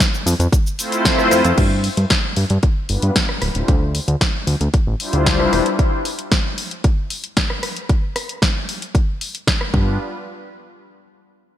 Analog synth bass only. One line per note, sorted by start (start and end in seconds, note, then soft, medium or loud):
0.26 0.34 F2 loud
0.40 0.48 F2 loud
1.31 1.42 F2 soft
1.45 1.53 F2 medium
1.58 1.89 G2 medium
1.97 2.05 G2 loud
2.37 2.45 G2 loud
2.50 2.58 G2 loud
2.90 2.98 G1 medium
3.03 3.11 G2 medium
3.42 3.50 D1 medium
3.55 3.63 D1 medium
3.68 4.00 D2 loud
4.08 4.16 D2 loud
4.47 4.55 D2 loud
4.61 4.69 D2 loud
4.87 4.95 A1 medium
5.13 5.41 D2 loud
5.40 5.48 C2 medium
5.53 5.61 E1 medium
9.74 9.98 G2 medium